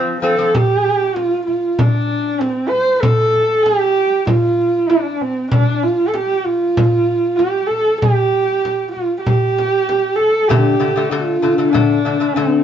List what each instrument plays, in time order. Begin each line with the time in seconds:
Already playing: lute F3 C4, horsehead fiddle F3
0.22 lute F3 C4, horsehead fiddle A4
0.38 lute F3 C4
0.54 horsehead fiddle G4, frame drum
0.86 frame drum
1.16 horsehead fiddle F4, frame drum
1.46 horsehead fiddle F4, frame drum
1.79 horsehead fiddle D4, frame drum
2.40 horsehead fiddle C4, frame drum
2.69 horsehead fiddle C5, frame drum
2.96 horsehead fiddle C5
3.01 horsehead fiddle A4, frame drum
3.34 frame drum
3.63 horsehead fiddle G4, frame drum
4.26 horsehead fiddle F4, frame drum
4.89 horsehead fiddle D4, frame drum
5.21 horsehead fiddle C4, frame drum
5.52 horsehead fiddle D4, frame drum
5.83 horsehead fiddle F4, frame drum
6.09 horsehead fiddle A4
6.14 horsehead fiddle G4, frame drum
6.45 horsehead fiddle F4, frame drum
6.77 frame drum
7.36 horsehead fiddle G4, frame drum
7.67 horsehead fiddle A4, frame drum
7.98 horsehead fiddle G4
8.02 frame drum
8.34 frame drum
8.65 frame drum
8.92 horsehead fiddle F4
8.97 frame drum
9.21 horsehead fiddle G4
9.26 frame drum
9.58 frame drum
9.89 frame drum
10.16 horsehead fiddle A4
10.20 frame drum
10.48 lute D3 A3, horsehead fiddle G4, frame drum
10.80 lute D3 A3, frame drum
10.96 lute D3 A3
11.10 lute D3 A3, horsehead fiddle F4, frame drum
11.42 lute D3 A3, frame drum
11.58 lute D3 A3
11.73 lute D3 A3, horsehead fiddle D4, frame drum
12.05 lute D3 A3
12.20 lute D3 A3
12.35 lute D3 A3, horsehead fiddle C4, frame drum